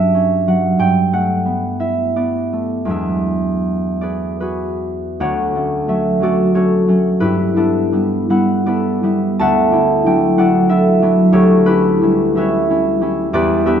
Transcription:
0.00 0.78 G2 medium
0.00 0.47 F#3 soft
0.00 0.13 C#4 soft
0.00 2.88 D4 soft
0.00 2.00 D5 medium
0.00 0.93 E5 medium
0.00 0.47 F#5 medium
0.00 0.27 G5 medium
0.00 2.72 A5 medium
0.15 0.82 C#4 soft
0.47 0.83 F#3 soft
0.47 0.83 F#5 medium
0.79 2.93 G2 medium
0.79 2.93 G5 medium
1.13 2.52 A3 soft
1.13 2.31 F#5 medium
1.45 2.15 B3 soft
1.80 5.22 E4 soft
1.80 2.89 E5 medium
2.16 5.23 B3 soft
2.16 4.00 D5 medium
2.53 2.93 A3 soft
2.85 5.20 E2 soft
2.85 5.87 F#3 soft
2.85 5.21 G#3 soft
2.89 6.79 D4 soft
2.89 5.23 E5 medium
4.01 4.41 G#4 soft
4.01 4.39 B4 soft
4.01 5.20 D5 medium
4.40 6.22 F#4 soft
4.40 5.24 G#4 soft
4.40 5.23 B4 medium
5.20 7.25 D2 medium
5.20 6.53 C#5 medium
5.20 6.21 D5 medium
5.20 7.25 F#5 medium
5.56 5.88 A3 soft
5.56 5.88 C#4 soft
5.88 6.20 F#3 soft
5.88 6.20 A3 soft
5.88 6.21 C#4 soft
5.88 6.45 E5 medium
6.20 6.87 F#3 soft
6.20 6.54 A3 soft
6.20 6.54 C#4 soft
6.20 6.55 F#4 medium
6.20 6.55 A4 soft
6.20 8.65 D5 medium
6.55 6.87 A3 soft
6.55 6.87 C#4 soft
6.55 7.25 F#4 soft
6.55 7.55 A4 soft
6.55 7.24 C#5 medium
6.88 7.24 F#3 soft
6.88 10.78 A3 soft
6.88 7.25 C#4 soft
7.20 9.42 G2 medium
7.20 7.56 E4 medium
7.20 9.42 G4 medium
7.20 8.66 B4 medium
7.56 7.91 B3 soft
7.56 9.71 D4 medium
7.56 7.92 E4 soft
7.56 8.66 A4 medium
7.92 8.28 G3 soft
7.92 8.29 B3 soft
7.92 8.29 E4 soft
8.29 9.02 G3 soft
8.29 8.65 B3 soft
8.29 8.66 E4 soft
8.29 9.39 F#5 medium
8.66 9.03 B3 soft
8.66 9.03 E4 soft
8.66 10.38 A4 soft
8.66 9.43 B4 medium
8.66 10.38 D5 medium
9.03 9.42 G3 soft
9.03 9.42 B3 soft
9.03 9.72 E4 soft
9.39 11.31 D2 medium
9.39 10.68 E5 medium
9.39 10.37 F#5 medium
9.39 13.29 A5 loud
9.72 10.06 D4 soft
9.72 10.06 E4 soft
10.06 10.37 F#3 soft
10.06 10.37 D4 soft
10.06 10.37 E4 soft
10.06 10.60 G5 medium
10.38 11.01 F#3 soft
10.38 10.69 D4 soft
10.38 10.69 E4 soft
10.38 10.70 A4 medium
10.38 11.37 D5 medium
10.38 11.36 F#5 medium
10.69 11.01 D4 soft
10.69 11.02 E4 soft
10.69 11.33 A4 medium
10.69 12.35 E5 medium
11.02 11.37 F#3 soft
11.02 11.37 D4 soft
11.02 11.66 E4 medium
11.32 13.34 D2 medium
11.32 11.66 G4 medium
11.32 13.35 A4 medium
11.32 12.37 C#5 loud
11.66 12.01 C#4 medium
11.66 12.02 E4 medium
11.66 13.33 G4 medium
11.66 12.37 B4 medium
12.01 12.36 G3 soft
12.01 12.36 C#4 soft
12.01 12.35 E4 soft
12.35 13.00 G3 soft
12.35 12.69 C#4 soft
12.35 12.69 E4 soft
12.35 13.33 B4 medium
12.35 13.65 E5 medium
12.41 13.35 C#5 medium
12.70 13.00 C#4 soft
12.70 13.01 E4 soft
13.01 13.80 G3 medium
13.01 13.35 C#4 soft
13.01 13.80 E4 soft
13.33 13.80 E2 medium
13.33 13.66 G4 medium
13.33 13.66 B4 medium
13.33 13.80 D5 loud
13.66 13.80 B3 soft
13.66 13.80 D4 medium
13.66 13.80 G4 medium
13.66 13.80 B4 medium
13.66 13.80 E5 medium

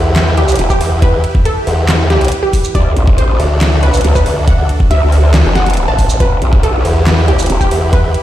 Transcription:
0.00 0.57 E2 loud
0.00 2.71 E4 medium
0.00 2.71 G4 medium
0.00 2.71 B4 medium
0.16 snare loud
0.16 clap medium
0.16 closed hi-hat medium
0.37 0.60 G4 medium
0.37 closed hi-hat medium
0.48 closed hi-hat medium
0.48 shaker medium
0.52 closed hi-hat medium
0.56 closed hi-hat medium
0.59 0.79 E1 loud
0.59 closed hi-hat medium
0.70 0.92 G4 loud
0.70 kick medium
0.70 shaker soft
0.81 1.22 E2 loud
0.81 open hi-hat medium
1.02 1.32 B4 loud
1.02 kick loud
1.02 closed hi-hat medium
1.24 closed hi-hat medium
1.35 kick loud
1.45 1.67 A4 loud
1.45 closed hi-hat medium
1.67 2.30 E2 loud
1.67 open hi-hat medium
1.89 snare loud
1.89 clap loud
1.89 closed hi-hat medium
2.10 2.32 G4 medium
2.10 snare medium
2.10 closed hi-hat medium
2.21 closed hi-hat medium
2.25 closed hi-hat medium
2.28 closed hi-hat medium
2.32 closed hi-hat medium
2.43 2.65 G4 medium
2.53 kick medium
2.53 open hi-hat medium
2.53 shaker medium
2.64 shaker medium
2.75 2.95 D2 loud
2.75 6.17 D4 medium
2.75 6.17 F#4 medium
2.75 6.17 A4 medium
2.75 3.04 D5 loud
2.75 kick loud
2.75 closed hi-hat medium
2.97 3.38 A1 loud
2.97 closed hi-hat medium
3.07 kick loud
3.18 3.40 C5 loud
3.18 closed hi-hat medium
3.40 4.03 D2 loud
3.40 open hi-hat medium
3.61 snare loud
3.61 clap loud
3.61 closed hi-hat medium
3.83 4.05 B4 medium
3.83 closed hi-hat soft
3.94 closed hi-hat medium
3.94 shaker medium
3.97 closed hi-hat medium
4.01 4.24 D2 loud
4.01 closed hi-hat medium
4.04 closed hi-hat medium
4.15 4.37 B4 loud
4.15 kick medium
4.15 shaker medium
4.26 4.67 D2 loud
4.26 open hi-hat medium
4.48 4.77 F#5 loud
4.48 kick loud
4.48 closed hi-hat medium
4.69 closed hi-hat soft
4.80 kick loud
4.91 5.32 D2 loud
4.91 5.13 E5 loud
4.91 closed hi-hat medium
5.12 open hi-hat medium
5.34 5.43 D2 loud
5.34 snare loud
5.34 clap medium
5.34 closed hi-hat medium
5.45 5.86 F#1 loud
5.55 5.78 F#5 medium
5.55 snare medium
5.55 closed hi-hat medium
5.66 closed hi-hat medium
5.70 closed hi-hat medium
5.73 closed hi-hat medium
5.77 closed hi-hat medium
5.88 6.18 A1 loud
5.88 6.10 A5 loud
5.99 kick medium
5.99 open hi-hat medium
5.99 shaker medium
6.10 shaker medium
6.20 6.40 E1 loud
6.20 8.23 E4 medium
6.20 8.23 G4 medium
6.20 6.50 B4 loud
6.20 8.23 B4 medium
6.20 kick loud
6.20 closed hi-hat medium
6.42 6.83 B1 loud
6.42 closed hi-hat medium
6.53 kick loud
6.63 6.85 A4 medium
6.63 closed hi-hat medium
6.85 7.48 E2 loud
6.85 open hi-hat medium
7.07 snare loud
7.07 clap medium
7.07 closed hi-hat medium
7.28 7.50 G4 medium
7.28 closed hi-hat soft
7.39 closed hi-hat medium
7.39 shaker medium
7.42 closed hi-hat medium
7.46 closed hi-hat medium
7.50 7.70 E1 loud
7.50 closed hi-hat medium
7.61 7.83 G4 loud
7.61 kick medium
7.61 shaker medium
7.71 8.13 E2 loud
7.71 open hi-hat medium
7.93 8.22 B4 loud
7.93 kick loud
7.93 closed hi-hat medium
8.14 closed hi-hat medium

